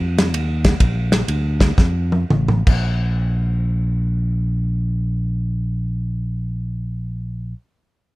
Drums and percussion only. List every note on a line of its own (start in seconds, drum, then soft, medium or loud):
0.18 snare loud
0.18 ride bell medium
0.34 ride bell medium
0.64 kick medium
0.64 snare loud
0.64 ride bell medium
0.80 kick loud
0.80 ride bell medium
1.12 snare loud
1.12 ride bell medium
1.28 ride bell medium
1.60 kick loud
1.60 snare loud
1.60 ride bell medium
1.78 kick loud
1.78 snare medium
2.12 high tom medium
2.30 mid tom medium
2.48 mid tom medium
2.67 kick loud
2.67 crash medium